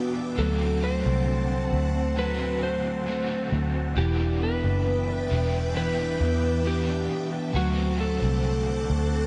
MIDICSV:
0, 0, Header, 1, 6, 480
1, 0, Start_track
1, 0, Tempo, 895522
1, 207, Time_signature, 4, 2, 24, 8
1, 4967, End_track
2, 0, Start_track
2, 0, Title_t, "String machine"
2, 0, Program_c, 0, 50
2, 0, Note_on_c, 0, 71, 84
2, 0, Note_on_c, 0, 76, 71
2, 0, Note_on_c, 0, 79, 73
2, 0, Note_on_c, 0, 86, 89
2, 184, Note_off_c, 0, 86, 0
2, 188, Note_off_c, 0, 76, 0
2, 189, Note_off_c, 0, 71, 0
2, 189, Note_off_c, 0, 79, 0
2, 202, Note_on_c, 0, 81, 80
2, 202, Note_on_c, 0, 86, 101
2, 203, Note_on_c, 0, 78, 73
2, 204, Note_on_c, 0, 60, 82
2, 1155, Note_off_c, 0, 86, 0
2, 2106, Note_off_c, 0, 60, 0
2, 2106, Note_off_c, 0, 78, 0
2, 2106, Note_off_c, 0, 81, 0
2, 2124, Note_on_c, 0, 71, 82
2, 2124, Note_on_c, 0, 86, 103
2, 2126, Note_on_c, 0, 76, 75
2, 2127, Note_on_c, 0, 79, 76
2, 4027, Note_off_c, 0, 71, 0
2, 4027, Note_off_c, 0, 86, 0
2, 4028, Note_off_c, 0, 76, 0
2, 4028, Note_off_c, 0, 79, 0
2, 4044, Note_on_c, 0, 86, 90
2, 4045, Note_on_c, 0, 78, 86
2, 4046, Note_on_c, 0, 72, 82
2, 4046, Note_on_c, 0, 81, 78
2, 4967, Note_off_c, 0, 72, 0
2, 4967, Note_off_c, 0, 78, 0
2, 4967, Note_off_c, 0, 81, 0
2, 4967, Note_off_c, 0, 86, 0
2, 4967, End_track
3, 0, Start_track
3, 0, Title_t, "Electric slide guitar"
3, 0, Program_c, 1, 29
3, 0, Note_on_c, 1, 66, 82
3, 65, Note_off_c, 1, 66, 0
3, 207, Note_on_c, 1, 69, 110
3, 448, Note_on_c, 1, 72, 111
3, 455, Note_off_c, 1, 69, 0
3, 1171, Note_off_c, 1, 72, 0
3, 1173, Note_on_c, 1, 71, 109
3, 1409, Note_off_c, 1, 71, 0
3, 1411, Note_on_c, 1, 72, 96
3, 1868, Note_off_c, 1, 72, 0
3, 2132, Note_on_c, 1, 67, 94
3, 2375, Note_on_c, 1, 71, 91
3, 2377, Note_off_c, 1, 67, 0
3, 3086, Note_off_c, 1, 71, 0
3, 3093, Note_on_c, 1, 71, 96
3, 3576, Note_on_c, 1, 67, 86
3, 3584, Note_off_c, 1, 71, 0
3, 3910, Note_off_c, 1, 67, 0
3, 4053, Note_on_c, 1, 66, 100
3, 4274, Note_off_c, 1, 66, 0
3, 4291, Note_on_c, 1, 69, 89
3, 4967, Note_off_c, 1, 69, 0
3, 4967, End_track
4, 0, Start_track
4, 0, Title_t, "Overdriven electric guitar"
4, 0, Program_c, 2, 29
4, 0, Note_on_c, 2, 52, 67
4, 0, Note_on_c, 2, 59, 69
4, 0, Note_on_c, 2, 62, 62
4, 0, Note_on_c, 2, 67, 62
4, 192, Note_off_c, 2, 52, 0
4, 194, Note_on_c, 2, 50, 79
4, 206, Note_off_c, 2, 59, 0
4, 209, Note_on_c, 2, 57, 85
4, 215, Note_off_c, 2, 67, 0
4, 218, Note_off_c, 2, 62, 0
4, 220, Note_on_c, 2, 60, 90
4, 234, Note_on_c, 2, 66, 93
4, 1155, Note_off_c, 2, 50, 0
4, 1157, Note_on_c, 2, 50, 64
4, 1159, Note_off_c, 2, 57, 0
4, 1166, Note_on_c, 2, 57, 73
4, 1169, Note_off_c, 2, 60, 0
4, 1175, Note_off_c, 2, 66, 0
4, 1175, Note_on_c, 2, 60, 74
4, 1182, Note_on_c, 2, 66, 80
4, 1637, Note_off_c, 2, 50, 0
4, 1639, Note_on_c, 2, 50, 59
4, 1643, Note_off_c, 2, 57, 0
4, 1650, Note_on_c, 2, 57, 60
4, 1651, Note_off_c, 2, 60, 0
4, 1655, Note_off_c, 2, 66, 0
4, 1658, Note_on_c, 2, 60, 62
4, 1666, Note_on_c, 2, 66, 67
4, 2119, Note_off_c, 2, 50, 0
4, 2121, Note_on_c, 2, 52, 87
4, 2127, Note_off_c, 2, 57, 0
4, 2129, Note_on_c, 2, 59, 94
4, 2133, Note_off_c, 2, 60, 0
4, 2135, Note_on_c, 2, 62, 96
4, 2137, Note_off_c, 2, 66, 0
4, 2140, Note_on_c, 2, 67, 83
4, 2834, Note_off_c, 2, 67, 0
4, 2841, Note_on_c, 2, 67, 49
4, 2844, Note_off_c, 2, 52, 0
4, 2848, Note_off_c, 2, 59, 0
4, 2852, Note_off_c, 2, 62, 0
4, 2854, Note_on_c, 2, 62, 50
4, 2866, Note_on_c, 2, 59, 43
4, 3079, Note_on_c, 2, 52, 75
4, 3083, Note_off_c, 2, 59, 0
4, 3084, Note_off_c, 2, 67, 0
4, 3089, Note_on_c, 2, 59, 71
4, 3091, Note_off_c, 2, 62, 0
4, 3096, Note_on_c, 2, 62, 73
4, 3104, Note_on_c, 2, 67, 77
4, 3551, Note_off_c, 2, 52, 0
4, 3558, Note_on_c, 2, 52, 61
4, 3563, Note_off_c, 2, 59, 0
4, 3569, Note_on_c, 2, 59, 61
4, 3574, Note_off_c, 2, 62, 0
4, 3576, Note_off_c, 2, 67, 0
4, 3577, Note_on_c, 2, 62, 58
4, 3583, Note_on_c, 2, 67, 69
4, 4032, Note_off_c, 2, 52, 0
4, 4034, Note_on_c, 2, 50, 89
4, 4048, Note_off_c, 2, 59, 0
4, 4050, Note_on_c, 2, 57, 86
4, 4055, Note_off_c, 2, 67, 0
4, 4060, Note_off_c, 2, 62, 0
4, 4062, Note_on_c, 2, 60, 89
4, 4074, Note_on_c, 2, 66, 95
4, 4967, Note_off_c, 2, 50, 0
4, 4967, Note_off_c, 2, 57, 0
4, 4967, Note_off_c, 2, 60, 0
4, 4967, Note_off_c, 2, 66, 0
4, 4967, End_track
5, 0, Start_track
5, 0, Title_t, "Clean electric guitar"
5, 0, Program_c, 3, 27
5, 0, Note_on_c, 3, 52, 85
5, 0, Note_on_c, 3, 59, 64
5, 0, Note_on_c, 3, 62, 63
5, 84, Note_off_c, 3, 62, 0
5, 87, Note_on_c, 3, 62, 64
5, 203, Note_off_c, 3, 52, 0
5, 205, Note_on_c, 3, 54, 90
5, 254, Note_off_c, 3, 59, 0
5, 327, Note_off_c, 3, 62, 0
5, 329, Note_on_c, 3, 60, 65
5, 447, Note_on_c, 3, 57, 66
5, 564, Note_off_c, 3, 60, 0
5, 570, Note_on_c, 3, 60, 64
5, 681, Note_off_c, 3, 57, 0
5, 687, Note_on_c, 3, 57, 70
5, 804, Note_off_c, 3, 60, 0
5, 811, Note_on_c, 3, 60, 64
5, 925, Note_off_c, 3, 57, 0
5, 931, Note_on_c, 3, 57, 65
5, 1047, Note_off_c, 3, 60, 0
5, 1053, Note_on_c, 3, 60, 49
5, 1164, Note_off_c, 3, 54, 0
5, 1170, Note_on_c, 3, 54, 89
5, 1284, Note_off_c, 3, 60, 0
5, 1290, Note_on_c, 3, 60, 55
5, 1403, Note_off_c, 3, 57, 0
5, 1409, Note_on_c, 3, 57, 63
5, 1522, Note_off_c, 3, 60, 0
5, 1528, Note_on_c, 3, 60, 58
5, 1644, Note_off_c, 3, 57, 0
5, 1651, Note_on_c, 3, 57, 62
5, 1762, Note_off_c, 3, 60, 0
5, 1769, Note_on_c, 3, 60, 60
5, 1882, Note_off_c, 3, 57, 0
5, 1888, Note_on_c, 3, 57, 57
5, 2002, Note_off_c, 3, 60, 0
5, 2008, Note_on_c, 3, 60, 58
5, 2124, Note_off_c, 3, 54, 0
5, 2126, Note_on_c, 3, 52, 83
5, 2176, Note_off_c, 3, 57, 0
5, 2176, Note_off_c, 3, 60, 0
5, 2249, Note_on_c, 3, 62, 61
5, 2370, Note_on_c, 3, 59, 68
5, 2487, Note_off_c, 3, 62, 0
5, 2489, Note_on_c, 3, 62, 61
5, 2602, Note_off_c, 3, 59, 0
5, 2608, Note_on_c, 3, 59, 67
5, 2725, Note_off_c, 3, 62, 0
5, 2727, Note_on_c, 3, 62, 68
5, 2842, Note_off_c, 3, 59, 0
5, 2849, Note_on_c, 3, 59, 61
5, 2969, Note_off_c, 3, 62, 0
5, 2971, Note_on_c, 3, 62, 51
5, 3084, Note_off_c, 3, 52, 0
5, 3091, Note_on_c, 3, 52, 88
5, 3206, Note_off_c, 3, 62, 0
5, 3208, Note_on_c, 3, 62, 60
5, 3324, Note_off_c, 3, 59, 0
5, 3331, Note_on_c, 3, 59, 68
5, 3445, Note_off_c, 3, 62, 0
5, 3447, Note_on_c, 3, 62, 67
5, 3560, Note_off_c, 3, 59, 0
5, 3566, Note_on_c, 3, 59, 57
5, 3684, Note_off_c, 3, 62, 0
5, 3687, Note_on_c, 3, 62, 68
5, 3801, Note_off_c, 3, 59, 0
5, 3808, Note_on_c, 3, 59, 58
5, 3923, Note_off_c, 3, 62, 0
5, 3925, Note_on_c, 3, 62, 61
5, 4043, Note_off_c, 3, 52, 0
5, 4045, Note_on_c, 3, 54, 83
5, 4096, Note_off_c, 3, 59, 0
5, 4164, Note_off_c, 3, 62, 0
5, 4166, Note_on_c, 3, 60, 61
5, 4286, Note_on_c, 3, 57, 69
5, 4401, Note_off_c, 3, 60, 0
5, 4408, Note_on_c, 3, 60, 64
5, 4519, Note_off_c, 3, 57, 0
5, 4525, Note_on_c, 3, 57, 72
5, 4640, Note_off_c, 3, 60, 0
5, 4646, Note_on_c, 3, 60, 66
5, 4758, Note_off_c, 3, 57, 0
5, 4765, Note_on_c, 3, 57, 61
5, 4880, Note_off_c, 3, 60, 0
5, 4886, Note_on_c, 3, 60, 54
5, 4967, Note_off_c, 3, 54, 0
5, 4967, Note_off_c, 3, 57, 0
5, 4967, Note_off_c, 3, 60, 0
5, 4967, End_track
6, 0, Start_track
6, 0, Title_t, "Picked electric bass"
6, 0, Program_c, 4, 34
6, 206, Note_on_c, 4, 38, 104
6, 548, Note_off_c, 4, 38, 0
6, 568, Note_on_c, 4, 36, 86
6, 910, Note_off_c, 4, 36, 0
6, 925, Note_on_c, 4, 38, 92
6, 1865, Note_off_c, 4, 38, 0
6, 1889, Note_on_c, 4, 38, 87
6, 2116, Note_off_c, 4, 38, 0
6, 2127, Note_on_c, 4, 28, 91
6, 2469, Note_off_c, 4, 28, 0
6, 2488, Note_on_c, 4, 30, 76
6, 2830, Note_off_c, 4, 30, 0
6, 2849, Note_on_c, 4, 28, 84
6, 3307, Note_off_c, 4, 28, 0
6, 3327, Note_on_c, 4, 40, 99
6, 3786, Note_off_c, 4, 40, 0
6, 4044, Note_on_c, 4, 38, 100
6, 4388, Note_off_c, 4, 38, 0
6, 4407, Note_on_c, 4, 36, 84
6, 4749, Note_off_c, 4, 36, 0
6, 4770, Note_on_c, 4, 38, 92
6, 4967, Note_off_c, 4, 38, 0
6, 4967, End_track
0, 0, End_of_file